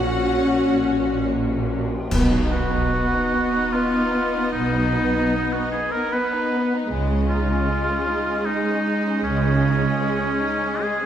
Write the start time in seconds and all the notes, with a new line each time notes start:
Already playing: A#1 A#2 C#4 F#4 F#5
2.11 B1 B2 B3 D#5, concert bass drum, crash
2.31 D#4
2.51 B3 F#4
2.73 D#4
2.92 B3
3.13 D#4
3.33 B3
3.53 D#4
3.73 B3 F4
3.93 D#4
4.14 B3
4.34 D#4
4.52 B1 B2 B3 D#4
4.74 D#4
4.94 B3
5.15 D#4
5.34 B3
5.53 D#4 F#4
5.71 B3 G#4
5.92 D#4 A#4
6.12 B3 B4
6.32 D#4
6.53 B3
6.73 D#4
6.91 C#2 C#3 G#3 D#5
7.10 C#4
7.29 D#4 F4
7.50 C#4
7.69 G#3
7.88 C#4
8.07 D#4
8.28 C#4
8.46 G#3 D#4
8.65 C#4
8.86 D#4
9.05 C#4
9.23 C#2 C#3 G#3 C#4
9.42 C#4
9.62 D#4
9.82 C#4
10.01 G#3
10.21 C#4
10.40 D#4
10.61 C#4
10.81 G#3 G#4
11.00 C#4